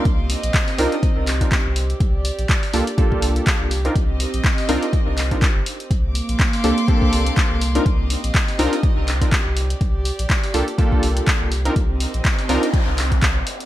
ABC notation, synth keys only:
X:1
M:4/4
L:1/16
Q:"Swing 16ths" 1/4=123
K:Cdor
V:1 name="Synth keys"
z6 [CDEFB] z4 [CDEFB] z4 | z6 [B,DFGA] z [B,DFGA]6 z [CDEFB] | z6 [CDEFB] z4 [CDEFB] z4 | z6 [B,CDGA] z [B,CDGA]6 z [CDEFB] |
z6 [CDEFB] z4 [CDEFB] z4 | z6 [B,DFGA] z [B,DFGA]6 z [CDEFB] | z6 [CDEFB] z8 z |]